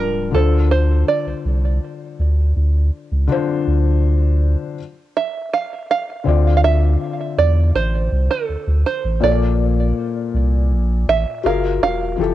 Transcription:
Already playing: C#1 G3 D4 F4 A#4
0.31 D2 D3 D4 F4 A4
0.36 C5
0.71 C5
1.09 D5
1.27 C2
1.45 C2
2.19 D2
2.56 D2
3.12 C#2
3.28 D3 D4 F4
3.32 C5
3.67 D2
5.17 E5
5.53 F5
5.91 F5
6.24 D2 D3 C4 F4
6.28 D5
6.57 F5
6.64 E5
7.38 E2 D5
7.75 A1 C5
8.12 C2
8.31 A4
8.49 D2
8.67 D2
8.86 C5
9.04 A1
9.20 A#1 A#2 A#3 A4 D5
9.25 C#5
9.31 D5
10.34 C2
10.71 A#1
11.08 A1 E5
11.44 F#1 F#3 F4 G#4 A#4 F5
11.82 E1 F5
12.16 F1 E3 F3 G4
12.21 A4

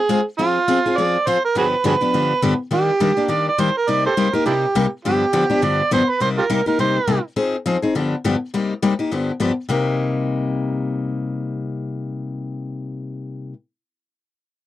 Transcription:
Already playing: G#4
0.09 G#3 C4 F4 G#4
0.38 F3 C4 F4 G#4
0.68 F3 C4 F4 G#4
0.86 C4 F4 G#4
0.98 F3 C4 F4 G#4 D5
1.27 F3 C4 F4 G#4 C5
1.45 A#4
1.55 G2 D3 F3 B3 D4 F#4 G4 G#4 B4
1.84 G2 D3 F3 B3 D4 F#4 G4 G#4 B4
2.01 F3 B3 D4 G4
2.14 G2 D3 F3 B3 D4 G4
2.42 G2 D3 F3 B3 D4 G4
2.71 D#3 G3 A#3 D4 G4
3.00 D#3 G3 A#3 D4 G4
3.17 A#3 D4 G4
3.28 D#3 G3 A#3 D4 G4 D5
3.48 D5
3.58 D#3 G3 A#3 D4 G4 C5
3.77 A#4
3.88 C3 G3 A#3 D#4 G4 D5
4.06 G4 A4 C5
4.17 C3 G3 A#3 D#4 G4
4.33 A#3 D#4 G4 A#4
4.46 C3 G3 A#3 D4 D#4 E4 G4
4.75 C3 G3 A#3 D#4 G4
5.05 G2 D3 F3 B3 D4 G4
5.33 G2 D3 F3 B3 D4 G4
5.50 F3 B3 D4 G4
5.62 G2 D3 F3 B3 D4 G4 D5
5.91 G2 D3 F3 B3 D4 G4 C5
6.09 B4
6.20 C3 G3 A#3 D#4 G4 C5
6.38 F4 G4 A#4
6.50 C3 G3 A#3 D#4 G4
6.66 A#3 D#4 G4 A#4
6.79 C3 G3 A#3 D#4 G4 C5
7.07 C3 G3 A#3 D#4 G4
7.36 F3 C4 D#4 G#4
7.66 F3 C4 D#4 G#4
7.82 C4 D#4 G#4
7.95 G2 D3 F3 B3 D4 G4
8.24 G2 D3 F3 B3 D4 G4
8.54 C3 G3 A#3 D#4 G4
8.82 C3 G3 A#3 D#4 G4
8.99 A#3 D#4 G4
9.11 G2 D3 F3 B3 D4 G4
9.40 G2 D3 F3 B3 D4 G4
9.69 C3 G3 A#3 D#4 G4

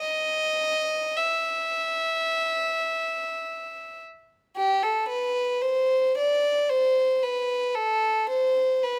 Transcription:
0.00 D#5
1.17 E5
4.56 G4
4.83 A4
5.09 B4
5.62 C5
6.18 D5
6.70 C5
7.23 B4
7.75 A4
8.29 C5
8.84 B4

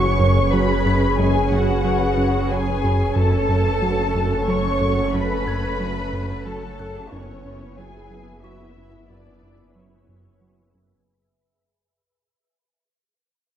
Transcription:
Already playing: F#1 C#4 G#4 B4 C#5 G#5 C#6
0.20 F#2
0.52 F#3 B4 B5
0.86 F#2 B6
1.18 F#2 G#3 C#4 G#4 G#5
1.51 F#2 F#4 F#5
1.85 F#3
2.17 F#2
2.50 F#3 G#4 G#5
2.84 F#2
3.16 F#1 F#2 A3 C#4 A4 C#5 F#5 A5
3.49 F#2
3.82 F#3
4.15 F#2
4.48 F#3 C#5 C#6
4.81 F#2
5.13 F#2 B4 B5
5.47 F#2 G#6
5.80 F#3
6.13 F#2
6.45 F#3 A4 A5
6.79 F#2 F#6
7.12 F#1 F#2 B3 C#4 E4 G#4 B4 C#5 E5
7.45 F#2
7.78 F#3 G#4 G#5
8.10 F#2
8.43 F#3 E4 E5 C#6
8.76 F#2
9.09 F#2 D4 D5
9.42 F#2
9.75 F#3 C#4 C#5
10.08 F#2
10.41 F#3
10.74 F#2

